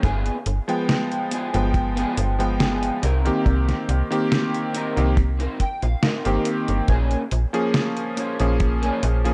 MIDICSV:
0, 0, Header, 1, 6, 480
1, 0, Start_track
1, 0, Tempo, 857143
1, 17, Time_signature, 4, 2, 24, 8
1, 5229, End_track
2, 0, Start_track
2, 0, Title_t, "Clean electric guitar"
2, 0, Program_c, 0, 27
2, 14, Note_on_c, 0, 59, 108
2, 20, Note_on_c, 0, 65, 100
2, 24, Note_on_c, 0, 68, 121
2, 199, Note_off_c, 0, 59, 0
2, 202, Note_off_c, 0, 65, 0
2, 204, Note_off_c, 0, 68, 0
2, 734, Note_on_c, 0, 59, 83
2, 739, Note_on_c, 0, 65, 75
2, 744, Note_on_c, 0, 68, 92
2, 919, Note_off_c, 0, 59, 0
2, 921, Note_off_c, 0, 65, 0
2, 924, Note_off_c, 0, 68, 0
2, 1098, Note_on_c, 0, 59, 109
2, 1102, Note_on_c, 0, 65, 97
2, 1108, Note_on_c, 0, 68, 119
2, 1214, Note_off_c, 0, 59, 0
2, 1216, Note_off_c, 0, 65, 0
2, 1219, Note_off_c, 0, 68, 0
2, 1451, Note_on_c, 0, 59, 82
2, 1456, Note_on_c, 0, 65, 78
2, 1461, Note_on_c, 0, 68, 92
2, 1688, Note_off_c, 0, 59, 0
2, 1690, Note_on_c, 0, 60, 87
2, 1693, Note_off_c, 0, 65, 0
2, 1696, Note_on_c, 0, 63, 81
2, 1698, Note_off_c, 0, 68, 0
2, 1700, Note_on_c, 0, 70, 97
2, 2174, Note_off_c, 0, 60, 0
2, 2176, Note_off_c, 0, 63, 0
2, 2179, Note_off_c, 0, 70, 0
2, 2650, Note_on_c, 0, 60, 83
2, 2655, Note_on_c, 0, 63, 75
2, 2660, Note_on_c, 0, 70, 91
2, 2837, Note_off_c, 0, 60, 0
2, 2839, Note_off_c, 0, 63, 0
2, 2842, Note_off_c, 0, 70, 0
2, 3016, Note_on_c, 0, 60, 106
2, 3021, Note_on_c, 0, 63, 96
2, 3026, Note_on_c, 0, 70, 118
2, 3134, Note_off_c, 0, 60, 0
2, 3136, Note_off_c, 0, 63, 0
2, 3139, Note_off_c, 0, 70, 0
2, 3139, Note_on_c, 0, 79, 72
2, 3255, Note_off_c, 0, 79, 0
2, 3265, Note_on_c, 0, 77, 70
2, 3370, Note_off_c, 0, 77, 0
2, 3374, Note_on_c, 0, 60, 82
2, 3378, Note_on_c, 0, 63, 74
2, 3381, Note_on_c, 0, 75, 60
2, 3384, Note_on_c, 0, 70, 92
2, 3616, Note_off_c, 0, 60, 0
2, 3618, Note_off_c, 0, 63, 0
2, 3621, Note_off_c, 0, 70, 0
2, 3836, Note_off_c, 0, 75, 0
2, 3853, Note_on_c, 0, 58, 109
2, 3857, Note_on_c, 0, 61, 102
2, 3862, Note_on_c, 0, 68, 116
2, 4039, Note_off_c, 0, 58, 0
2, 4041, Note_off_c, 0, 61, 0
2, 4043, Note_off_c, 0, 68, 0
2, 4572, Note_on_c, 0, 58, 85
2, 4576, Note_on_c, 0, 61, 74
2, 4581, Note_on_c, 0, 65, 90
2, 4758, Note_off_c, 0, 58, 0
2, 4760, Note_off_c, 0, 61, 0
2, 4762, Note_off_c, 0, 65, 0
2, 4939, Note_on_c, 0, 58, 108
2, 4944, Note_on_c, 0, 61, 96
2, 4949, Note_on_c, 0, 68, 118
2, 5055, Note_off_c, 0, 58, 0
2, 5057, Note_off_c, 0, 61, 0
2, 5060, Note_off_c, 0, 68, 0
2, 5229, End_track
3, 0, Start_track
3, 0, Title_t, "Electric grand piano"
3, 0, Program_c, 1, 2
3, 379, Note_on_c, 1, 53, 85
3, 382, Note_on_c, 1, 56, 77
3, 386, Note_on_c, 1, 59, 80
3, 390, Note_on_c, 1, 79, 95
3, 831, Note_off_c, 1, 53, 0
3, 832, Note_off_c, 1, 56, 0
3, 834, Note_off_c, 1, 59, 0
3, 836, Note_off_c, 1, 79, 0
3, 859, Note_on_c, 1, 53, 83
3, 862, Note_on_c, 1, 56, 76
3, 863, Note_on_c, 1, 59, 76
3, 867, Note_on_c, 1, 79, 90
3, 1311, Note_off_c, 1, 53, 0
3, 1312, Note_off_c, 1, 56, 0
3, 1313, Note_off_c, 1, 59, 0
3, 1315, Note_off_c, 1, 79, 0
3, 1336, Note_on_c, 1, 53, 81
3, 1339, Note_on_c, 1, 56, 73
3, 1344, Note_on_c, 1, 59, 71
3, 1346, Note_on_c, 1, 79, 84
3, 1680, Note_off_c, 1, 53, 0
3, 1682, Note_off_c, 1, 56, 0
3, 1684, Note_off_c, 1, 59, 0
3, 1685, Note_off_c, 1, 79, 0
3, 1820, Note_on_c, 1, 51, 79
3, 1824, Note_on_c, 1, 58, 70
3, 1826, Note_on_c, 1, 60, 72
3, 1829, Note_on_c, 1, 67, 89
3, 2272, Note_off_c, 1, 51, 0
3, 2274, Note_off_c, 1, 58, 0
3, 2275, Note_off_c, 1, 60, 0
3, 2276, Note_off_c, 1, 67, 0
3, 2298, Note_on_c, 1, 51, 89
3, 2300, Note_on_c, 1, 58, 78
3, 2305, Note_on_c, 1, 60, 84
3, 2307, Note_on_c, 1, 67, 98
3, 2751, Note_off_c, 1, 51, 0
3, 2752, Note_off_c, 1, 58, 0
3, 2754, Note_off_c, 1, 60, 0
3, 2755, Note_off_c, 1, 67, 0
3, 2779, Note_on_c, 1, 51, 82
3, 2783, Note_on_c, 1, 58, 76
3, 2785, Note_on_c, 1, 60, 75
3, 2789, Note_on_c, 1, 67, 87
3, 2890, Note_off_c, 1, 51, 0
3, 2892, Note_off_c, 1, 58, 0
3, 2893, Note_off_c, 1, 60, 0
3, 2895, Note_off_c, 1, 67, 0
3, 3498, Note_on_c, 1, 51, 84
3, 3503, Note_on_c, 1, 58, 76
3, 3504, Note_on_c, 1, 60, 79
3, 3508, Note_on_c, 1, 67, 91
3, 3841, Note_off_c, 1, 51, 0
3, 3843, Note_off_c, 1, 58, 0
3, 3844, Note_off_c, 1, 60, 0
3, 3846, Note_off_c, 1, 67, 0
3, 4217, Note_on_c, 1, 53, 85
3, 4220, Note_on_c, 1, 58, 77
3, 4222, Note_on_c, 1, 61, 78
3, 4225, Note_on_c, 1, 68, 94
3, 4670, Note_off_c, 1, 53, 0
3, 4671, Note_off_c, 1, 58, 0
3, 4673, Note_off_c, 1, 61, 0
3, 4674, Note_off_c, 1, 68, 0
3, 4701, Note_on_c, 1, 53, 82
3, 4703, Note_on_c, 1, 58, 78
3, 4707, Note_on_c, 1, 61, 75
3, 4709, Note_on_c, 1, 68, 92
3, 5152, Note_off_c, 1, 53, 0
3, 5153, Note_off_c, 1, 58, 0
3, 5155, Note_off_c, 1, 61, 0
3, 5156, Note_off_c, 1, 68, 0
3, 5176, Note_on_c, 1, 53, 77
3, 5179, Note_on_c, 1, 58, 72
3, 5181, Note_on_c, 1, 61, 72
3, 5184, Note_on_c, 1, 68, 87
3, 5229, Note_off_c, 1, 53, 0
3, 5229, Note_off_c, 1, 58, 0
3, 5229, Note_off_c, 1, 61, 0
3, 5229, Note_off_c, 1, 68, 0
3, 5229, End_track
4, 0, Start_track
4, 0, Title_t, "FM bass"
4, 0, Program_c, 2, 39
4, 20, Note_on_c, 2, 31, 97
4, 171, Note_off_c, 2, 31, 0
4, 259, Note_on_c, 2, 31, 93
4, 336, Note_off_c, 2, 31, 0
4, 865, Note_on_c, 2, 31, 98
4, 1148, Note_off_c, 2, 31, 0
4, 1219, Note_on_c, 2, 31, 98
4, 1628, Note_off_c, 2, 31, 0
4, 1698, Note_on_c, 2, 36, 97
4, 1850, Note_off_c, 2, 36, 0
4, 1938, Note_on_c, 2, 36, 99
4, 2090, Note_off_c, 2, 36, 0
4, 2177, Note_on_c, 2, 36, 94
4, 2255, Note_off_c, 2, 36, 0
4, 2785, Note_on_c, 2, 36, 97
4, 3068, Note_off_c, 2, 36, 0
4, 3264, Note_on_c, 2, 34, 82
4, 3334, Note_off_c, 2, 34, 0
4, 3505, Note_on_c, 2, 31, 81
4, 3574, Note_off_c, 2, 31, 0
4, 3745, Note_on_c, 2, 31, 83
4, 3814, Note_off_c, 2, 31, 0
4, 3856, Note_on_c, 2, 34, 100
4, 4009, Note_off_c, 2, 34, 0
4, 4099, Note_on_c, 2, 34, 95
4, 4176, Note_off_c, 2, 34, 0
4, 4706, Note_on_c, 2, 34, 95
4, 4988, Note_off_c, 2, 34, 0
4, 5057, Note_on_c, 2, 34, 99
4, 5229, Note_off_c, 2, 34, 0
4, 5229, End_track
5, 0, Start_track
5, 0, Title_t, "Muted clean electric guitar strokes"
5, 378, Note_on_c, 9, 29, 31
5, 434, Note_off_c, 9, 29, 0
5, 1338, Note_on_c, 9, 29, 88
5, 1394, Note_off_c, 9, 29, 0
5, 2297, Note_on_c, 9, 29, 31
5, 2353, Note_off_c, 9, 29, 0
5, 3261, Note_on_c, 9, 29, 85
5, 3317, Note_off_c, 9, 29, 0
5, 4219, Note_on_c, 9, 29, 32
5, 4275, Note_off_c, 9, 29, 0
5, 5180, Note_on_c, 9, 29, 86
5, 5229, Note_off_c, 9, 29, 0
5, 5229, End_track
6, 0, Start_track
6, 0, Title_t, "Drums"
6, 18, Note_on_c, 9, 36, 127
6, 19, Note_on_c, 9, 42, 67
6, 74, Note_off_c, 9, 36, 0
6, 75, Note_off_c, 9, 42, 0
6, 144, Note_on_c, 9, 42, 39
6, 200, Note_off_c, 9, 42, 0
6, 258, Note_on_c, 9, 42, 88
6, 314, Note_off_c, 9, 42, 0
6, 385, Note_on_c, 9, 42, 40
6, 441, Note_off_c, 9, 42, 0
6, 498, Note_on_c, 9, 38, 117
6, 498, Note_on_c, 9, 42, 64
6, 554, Note_off_c, 9, 38, 0
6, 554, Note_off_c, 9, 42, 0
6, 625, Note_on_c, 9, 42, 37
6, 681, Note_off_c, 9, 42, 0
6, 736, Note_on_c, 9, 42, 89
6, 792, Note_off_c, 9, 42, 0
6, 863, Note_on_c, 9, 42, 37
6, 919, Note_off_c, 9, 42, 0
6, 975, Note_on_c, 9, 36, 124
6, 977, Note_on_c, 9, 42, 61
6, 1031, Note_off_c, 9, 36, 0
6, 1033, Note_off_c, 9, 42, 0
6, 1104, Note_on_c, 9, 42, 38
6, 1160, Note_off_c, 9, 42, 0
6, 1218, Note_on_c, 9, 42, 95
6, 1274, Note_off_c, 9, 42, 0
6, 1344, Note_on_c, 9, 42, 39
6, 1400, Note_off_c, 9, 42, 0
6, 1457, Note_on_c, 9, 38, 121
6, 1457, Note_on_c, 9, 42, 66
6, 1513, Note_off_c, 9, 38, 0
6, 1513, Note_off_c, 9, 42, 0
6, 1583, Note_on_c, 9, 42, 39
6, 1639, Note_off_c, 9, 42, 0
6, 1697, Note_on_c, 9, 42, 92
6, 1753, Note_off_c, 9, 42, 0
6, 1824, Note_on_c, 9, 42, 38
6, 1880, Note_off_c, 9, 42, 0
6, 1937, Note_on_c, 9, 36, 110
6, 1938, Note_on_c, 9, 42, 64
6, 1993, Note_off_c, 9, 36, 0
6, 1994, Note_off_c, 9, 42, 0
6, 2064, Note_on_c, 9, 38, 37
6, 2064, Note_on_c, 9, 42, 37
6, 2120, Note_off_c, 9, 38, 0
6, 2120, Note_off_c, 9, 42, 0
6, 2178, Note_on_c, 9, 42, 84
6, 2234, Note_off_c, 9, 42, 0
6, 2305, Note_on_c, 9, 42, 38
6, 2361, Note_off_c, 9, 42, 0
6, 2418, Note_on_c, 9, 38, 116
6, 2418, Note_on_c, 9, 42, 64
6, 2474, Note_off_c, 9, 38, 0
6, 2474, Note_off_c, 9, 42, 0
6, 2545, Note_on_c, 9, 42, 38
6, 2601, Note_off_c, 9, 42, 0
6, 2657, Note_on_c, 9, 42, 86
6, 2713, Note_off_c, 9, 42, 0
6, 2784, Note_on_c, 9, 42, 36
6, 2840, Note_off_c, 9, 42, 0
6, 2895, Note_on_c, 9, 36, 112
6, 2896, Note_on_c, 9, 42, 59
6, 2951, Note_off_c, 9, 36, 0
6, 2952, Note_off_c, 9, 42, 0
6, 3023, Note_on_c, 9, 42, 37
6, 3079, Note_off_c, 9, 42, 0
6, 3136, Note_on_c, 9, 36, 63
6, 3136, Note_on_c, 9, 42, 87
6, 3192, Note_off_c, 9, 36, 0
6, 3192, Note_off_c, 9, 42, 0
6, 3261, Note_on_c, 9, 42, 37
6, 3317, Note_off_c, 9, 42, 0
6, 3375, Note_on_c, 9, 38, 123
6, 3375, Note_on_c, 9, 42, 62
6, 3431, Note_off_c, 9, 38, 0
6, 3431, Note_off_c, 9, 42, 0
6, 3501, Note_on_c, 9, 42, 38
6, 3557, Note_off_c, 9, 42, 0
6, 3613, Note_on_c, 9, 42, 88
6, 3669, Note_off_c, 9, 42, 0
6, 3741, Note_on_c, 9, 42, 36
6, 3797, Note_off_c, 9, 42, 0
6, 3854, Note_on_c, 9, 42, 63
6, 3855, Note_on_c, 9, 36, 118
6, 3910, Note_off_c, 9, 42, 0
6, 3911, Note_off_c, 9, 36, 0
6, 3980, Note_on_c, 9, 42, 37
6, 4036, Note_off_c, 9, 42, 0
6, 4096, Note_on_c, 9, 42, 84
6, 4152, Note_off_c, 9, 42, 0
6, 4222, Note_on_c, 9, 42, 37
6, 4278, Note_off_c, 9, 42, 0
6, 4335, Note_on_c, 9, 38, 115
6, 4335, Note_on_c, 9, 42, 60
6, 4391, Note_off_c, 9, 38, 0
6, 4391, Note_off_c, 9, 42, 0
6, 4461, Note_on_c, 9, 42, 36
6, 4517, Note_off_c, 9, 42, 0
6, 4576, Note_on_c, 9, 42, 84
6, 4632, Note_off_c, 9, 42, 0
6, 4701, Note_on_c, 9, 42, 35
6, 4757, Note_off_c, 9, 42, 0
6, 4816, Note_on_c, 9, 42, 59
6, 4818, Note_on_c, 9, 36, 122
6, 4872, Note_off_c, 9, 42, 0
6, 4874, Note_off_c, 9, 36, 0
6, 4943, Note_on_c, 9, 42, 36
6, 4999, Note_off_c, 9, 42, 0
6, 5056, Note_on_c, 9, 42, 88
6, 5112, Note_off_c, 9, 42, 0
6, 5182, Note_on_c, 9, 42, 36
6, 5229, Note_off_c, 9, 42, 0
6, 5229, End_track
0, 0, End_of_file